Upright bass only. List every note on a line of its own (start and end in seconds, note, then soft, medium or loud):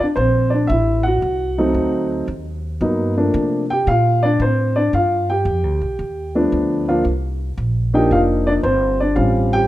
0.16 0.68 A#1 medium
0.69 1.21 A1 medium
1.22 1.73 C2 medium
1.74 2.26 D2 medium
2.28 2.79 D#2 medium
2.81 3.32 G2 medium
3.34 3.85 C3 medium
3.87 4.38 A#2 medium
4.40 4.91 A2 medium
4.93 5.44 G2 medium
5.45 5.63 F2 medium
5.63 5.81 D2 medium
5.81 5.98 B1 medium
5.99 6.50 D#2 medium
6.52 7.03 D2 medium
7.05 7.56 C2 medium
7.58 8.09 A#1 medium
8.11 8.62 F1 medium
8.63 9.15 G1 medium
9.16 9.67 A1 medium